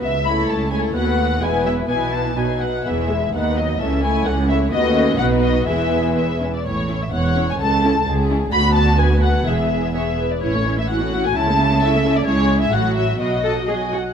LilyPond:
<<
  \new Staff \with { instrumentName = "Violin section" } { \time 2/4 \key e \major \tempo 4 = 128 e''8 b''8 a''8 gis''8 | fis''4 gis''8 e''8 | gis''8 a''8 gis''8 fis''8 | e''4 fis''8 dis''8 |
e''8 gis''8 fis''8 e''8 | dis''4 fis''8 dis''8 | e''4 e''8. d''16 | \key a \major cis''8. e''16 fis''8. gis''16 |
a''4 r4 | b''8 a''8 gis''8 fis''8 | e''4 e''8. d''16 | cis''8. e''16 fis''8. gis''16 |
a''4 e''8. d''16 | \key b \mixolydian cis''8. e''16 fis''8 e''8 | dis''4. r8 | }
  \new Staff \with { instrumentName = "Violin section" } { \time 2/4 \key e \major r8 <a' cis''>4 <a' cis''>8 | <fis' b'>4 <e' b'>4 | <e' b'>4 <dis' b'>8 r8 | <gis' b'>8 <e' gis'>8 <dis' b'>8 <b dis''>8 |
<cis' a'>8 <e' cis''>8 <cis' a'>8 <e' cis''>8 | <fis' b'>4 <fis' b'>4 | <gis' b'>4. r8 | \key a \major r4 cis''4 |
a'4 gis'4 | fis'4 b'4 | gis'4 cis''8 b'8 | r4 fis'4 |
e'4 a'4 | \key b \mixolydian gis'4 fis'4 | fis'8 a''8 gis''8 fis''8 | }
  \new Staff \with { instrumentName = "Viola section" } { \time 2/4 \key e \major << { r8 e'4 e'8 | b4 b4 | b4 b8 r8 | b8 gis8 b8 dis'8 |
cis'8 e'8 cis'8 e'8 | b8 cis'8 dis'4 | e'4 b8 cis'8 | \key a \major r8 e'8 r8 e'8 |
r8 e'8 r8 e'8 | fis'2 | gis'4 gis'8 r8 | e'16 cis'16 e'16 cis'16 e'16 cis'16 e'16 cis'16 |
e'16 cis'16 e'16 cis'16 e'16 cis'16 e'16 cis'16 | \key b \mixolydian e'4 fis'4 | fis'4. r8 | } \\ { r8 a4 a8 | a4 gis8 fis8 | e4 fis8 r8 | e8 gis8 dis8 fis8 |
e8 a8 e8 a8 | a4 b4 | b4 r4 | r8 cis'8 r8 cis'8 |
r8 cis'8 r8 cis'8 | b2 | b4 b8 r8 | cis'16 a16 cis'16 a16 cis'16 a16 cis'16 a16 |
cis'16 a16 cis'16 a16 cis'16 a16 cis'16 a16 | gis4 fis4 | fis4. r8 | } >> }
  \new Staff \with { instrumentName = "Cello section" } { \clef bass \time 2/4 \key e \major cis,4 cis,4 | dis,4 e,4 | b,4 b,8 r8 | e,4 dis,4 |
cis,4 cis,4 | dis,4 b,4 | e,4. r8 | \key a \major a,4 e,4 |
cis,4 cis,4 | d,2 | e,4. r8 | a,2 |
cis2 | \key b \mixolydian cis4 a,4 | b,8 a'8 gis'8 fis'8 | }
  \new Staff \with { instrumentName = "Double bass section" } { \clef bass \time 2/4 \key e \major cis,4 cis,4 | dis,4 e,,4 | b,,4 b,,8 r8 | e,,4 dis,4 |
cis,4 cis,4 | dis,4 b,,4 | e,,4. r8 | \key a \major a,,4 e,,4 |
cis,4 cis,4 | d,2 | e,,4. r8 | a,,2 |
cis,2 | \key b \mixolydian cis,4 a,,4 | b,,4. r8 | }
>>